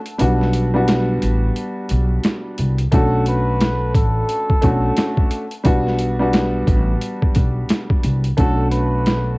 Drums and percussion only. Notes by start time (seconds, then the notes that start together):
0.06 closed hi-hat
0.19 closed hi-hat
0.41 snare
0.53 closed hi-hat
0.88 snare, closed hi-hat
1.22 closed hi-hat
1.56 closed hi-hat
1.89 closed hi-hat
2.24 snare, closed hi-hat
2.58 closed hi-hat
2.78 closed hi-hat
2.92 kick, closed hi-hat
3.26 closed hi-hat
3.61 snare, closed hi-hat
3.95 kick, closed hi-hat
4.29 closed hi-hat
4.50 kick
4.62 kick, closed hi-hat
4.96 snare, closed hi-hat
5.17 kick
5.31 closed hi-hat
5.51 closed hi-hat
5.65 kick, closed hi-hat
5.87 snare
5.99 closed hi-hat
6.33 snare, closed hi-hat
6.67 kick, closed hi-hat
7.01 closed hi-hat
7.22 kick
7.35 kick, closed hi-hat
7.69 snare, closed hi-hat
7.90 kick
8.03 closed hi-hat
8.24 closed hi-hat
8.38 kick, closed hi-hat
8.71 closed hi-hat
9.06 snare, closed hi-hat